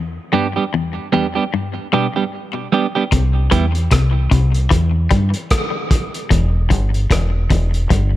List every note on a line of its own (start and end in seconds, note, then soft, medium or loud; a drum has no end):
0.00 0.17 E2 medium
0.33 0.57 G2 medium
0.33 0.46 G3 medium
0.33 0.46 B3 medium
0.33 0.46 D4 medium
0.33 0.47 G4 medium
0.56 0.64 G3 soft
0.56 0.64 B3 soft
0.56 0.64 D4 soft
0.56 0.63 G4 medium
0.74 0.98 E2 medium
1.12 1.37 E2 medium
1.12 1.26 G3 medium
1.12 1.26 B3 medium
1.12 1.26 D4 medium
1.12 1.26 G4 loud
1.35 1.44 G3 medium
1.35 1.43 B3 medium
1.35 1.43 D4 medium
1.35 1.43 G4 medium
1.54 1.77 G2 medium
1.93 2.07 B2 medium
1.93 2.06 G3 medium
1.93 2.06 B3 medium
1.93 2.06 D4 medium
1.93 2.06 G4 medium
2.16 2.24 G3 medium
2.16 2.23 B3 soft
2.16 2.23 D4 medium
2.16 2.23 G4 medium
2.72 2.85 G3 medium
2.72 2.86 B3 medium
2.72 2.86 D4 medium
2.72 2.86 G4 medium
2.95 3.03 G3 medium
2.95 3.03 B3 medium
2.95 3.03 D4 medium
2.95 3.03 G4 medium
3.12 3.48 C2 loud
3.12 3.36 C3 medium
3.12 kick loud
3.12 closed hi-hat medium
3.51 3.88 E2 medium
3.51 3.75 E3 medium
3.51 3.65 G3 medium
3.51 3.65 B3 loud
3.51 3.65 E4 medium
3.51 3.65 G4 loud
3.51 kick medium
3.51 closed hi-hat medium
3.75 closed hi-hat soft
3.91 4.28 C2 medium
3.91 4.16 C3 medium
3.91 kick loud
3.91 cross-stick loud
3.91 closed hi-hat medium
4.31 4.67 C2 medium
4.31 4.55 C3 medium
4.31 kick loud
4.31 closed hi-hat medium
4.54 closed hi-hat soft
4.70 5.07 E2 loud
4.70 4.95 E3 medium
4.70 kick loud
4.70 closed hi-hat medium
5.11 5.33 G2 medium
5.11 5.25 G3 medium
5.11 kick medium
5.11 closed hi-hat medium
5.34 closed hi-hat medium
5.51 kick loud
5.51 cross-stick loud
5.51 closed hi-hat medium
5.91 kick loud
5.91 closed hi-hat medium
6.14 closed hi-hat soft
6.30 6.67 E1 loud
6.30 6.55 E2 medium
6.30 kick loud
6.30 closed hi-hat medium
6.70 7.07 G1 medium
6.70 6.94 G2 medium
6.70 kick medium
6.70 closed hi-hat medium
6.94 closed hi-hat soft
7.11 7.47 E1 medium
7.11 7.35 E2 medium
7.11 kick loud
7.11 cross-stick loud
7.11 closed hi-hat medium
7.50 7.86 E1 medium
7.50 7.75 E2 medium
7.50 kick loud
7.50 closed hi-hat medium
7.74 closed hi-hat soft
7.90 8.17 G1 loud
7.90 8.14 G2 medium
7.90 kick loud
7.90 closed hi-hat medium